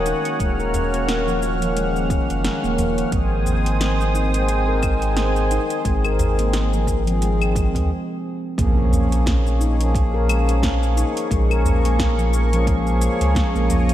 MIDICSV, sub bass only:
0, 0, Header, 1, 2, 480
1, 0, Start_track
1, 0, Key_signature, -5, "minor"
1, 0, Tempo, 681818
1, 280, Time_signature, 4, 2, 24, 8
1, 9812, End_track
2, 0, Start_track
2, 0, Title_t, "Sub bass"
2, 0, Program_c, 0, 38
2, 0, Note_on_c, 0, 27, 92
2, 91, Note_off_c, 0, 27, 0
2, 279, Note_on_c, 0, 27, 90
2, 1532, Note_off_c, 0, 27, 0
2, 1617, Note_on_c, 0, 30, 87
2, 1751, Note_off_c, 0, 30, 0
2, 1858, Note_on_c, 0, 27, 88
2, 2136, Note_off_c, 0, 27, 0
2, 2197, Note_on_c, 0, 32, 99
2, 3931, Note_off_c, 0, 32, 0
2, 4118, Note_on_c, 0, 32, 102
2, 5456, Note_on_c, 0, 39, 81
2, 5466, Note_off_c, 0, 32, 0
2, 5559, Note_off_c, 0, 39, 0
2, 6040, Note_on_c, 0, 34, 99
2, 7772, Note_off_c, 0, 34, 0
2, 7961, Note_on_c, 0, 34, 99
2, 9212, Note_off_c, 0, 34, 0
2, 9299, Note_on_c, 0, 37, 92
2, 9431, Note_off_c, 0, 37, 0
2, 9540, Note_on_c, 0, 34, 84
2, 9812, Note_off_c, 0, 34, 0
2, 9812, End_track
0, 0, End_of_file